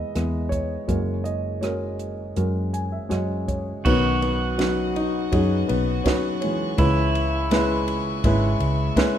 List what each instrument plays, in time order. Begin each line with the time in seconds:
Already playing: grand piano E2 E3 G#3 B3 E4 B4 D#5 E5
0.15 fingered electric bass E2, grand piano G#3 B3 E4 B4, cross-stick, closed hi-hat
0.49 grand piano C#5, kick, closed hi-hat
0.88 grand piano F#1 F#2 G#3 C#4 F#4 A#4, fingered electric bass F#2, kick, closed hi-hat
1.24 grand piano D#5, closed hi-hat
1.61 grand piano G#3 C#4 F#4 A#4 C#5, cross-stick, closed hi-hat
1.99 closed hi-hat
2.36 fingered electric bass F#2, grand piano G#3 C#4 F#4 A#4, closed hi-hat
2.73 grand piano G#5, closed hi-hat
2.92 grand piano E5
3.09 fingered electric bass F#2, grand piano G#3 C#4 F#4 C#5 D#5, cross-stick, closed hi-hat
3.48 grand piano C#5, kick, closed hi-hat
3.85 grand piano B1 B2 D#3 F#3 B3 C#4 D#4 B4, fingered electric bass B1, pedal steel guitar F#4, string section B4 D#5 F#5 C#6, kick, crash
4.22 grand piano B3, ride
4.58 grand piano F#3 C#4 D#4 B4, snare, ride
4.96 grand piano D#4, ride
5.32 fingered electric bass F#2, grand piano F#3 C#4 D#4 G#4, kick, ride
5.68 fingered electric bass B1, grand piano B3, ride
6.04 grand piano F#3 C#4 D#4 B4, kick, snare, ride
6.41 grand piano E3 G#3 C#4, ride
6.78 grand piano C#2 C#3 G#3 C#4 E4 B4, fingered electric bass C#2, pedal steel guitar E4, string section E5 G#5, kick, ride
7.15 ride
7.51 grand piano G#3 C#4 E4 B4, snare, ride
7.88 ride
8.24 fingered electric bass G#1, grand piano G#3 C#4 E4 B4, kick, ride
8.60 fingered electric bass C#2, ride
8.96 grand piano G#3 C#4 E4 B4, kick, snare, ride